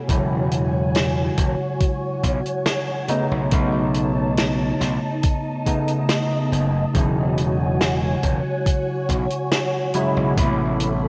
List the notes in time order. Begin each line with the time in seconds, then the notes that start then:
Already playing: F#4 C#5 G#5
0.08 E1 C#3 F#3 G#3 E4, kick, closed hi-hat
0.51 closed hi-hat
0.95 snare, closed hi-hat
1.37 E1, kick, closed hi-hat
1.80 kick, closed hi-hat
2.23 B1, kick, closed hi-hat
2.46 closed hi-hat
2.66 snare, closed hi-hat
3.08 C#3 A3 B3 D#4 A5, closed hi-hat
3.31 B1
3.50 B1 C#3 A3 B3 D#4, kick, closed hi-hat
3.94 closed hi-hat
4.37 snare, closed hi-hat
4.80 B1 D#5, snare, closed hi-hat
5.23 kick, closed hi-hat
5.66 C#3 A3 B3 D#4, kick, closed hi-hat
5.88 closed hi-hat
6.09 snare, closed hi-hat
6.52 F#1, closed hi-hat
6.94 E1 C#3 F#3 G#3 E4 F#4 C#5 G#5, kick, closed hi-hat
7.38 closed hi-hat
7.81 snare, closed hi-hat
8.23 E1, kick, closed hi-hat
8.66 kick, closed hi-hat
9.09 B1, kick, closed hi-hat
9.30 closed hi-hat
9.51 snare, closed hi-hat
9.94 C#3 F#3 G#3 E4, closed hi-hat
10.17 B1
10.36 A1 C3 A3 B3 E4 A4 B5, kick, closed hi-hat
10.80 closed hi-hat